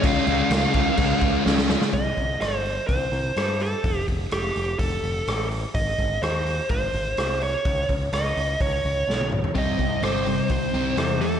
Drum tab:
CC |x-x-x-x-x-x-----|----------------|----------------|----------------|
HH |----------------|o-o-o-o-o-o-o-o-|o-o-o-o-o-o-o-o-|o-o-o-o-o-o-o-o-|
SD |----o-------oooo|----r-------r---|----r-------r---|----r-------r---|
T1 |----------------|----------------|----------------|----------------|
T2 |----------------|----------------|----------------|----------------|
FT |----------------|----------------|----------------|----------------|
BD |o-----o-o-o-----|o-o-----o-------|o-o-----o-------|o-o-----o-------|

CC |----------------|----------------|
HH |o-o-o-o-o-o-----|o-o-o-o-o-o-o-o-|
SD |----r-------o---|----r-------r---|
T1 |-------------o--|----------------|
T2 |--------------o-|----------------|
FT |---------------o|----------------|
BD |o-o-----o-------|o-o-----o-------|